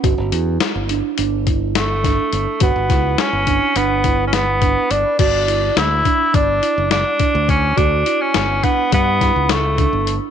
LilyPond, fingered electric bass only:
\new Staff \with { instrumentName = "Fingered electric bass" } { \clef bass \time 9/8 \key g \lydian \tempo 4. = 70 g,,16 g,,16 e,8 r16 g,,8 r16 g,,2 g,,16 r16 | g,,16 g,,16 cis,8 r16 g,,8 r16 g,,2 g,,16 r16 | g,,4 d,8 r8 g,,8 r16 fis,,8 r8 d,8. | d,8 r8 g,,8 r8 g,8. cis,4 g,,8 r16 | }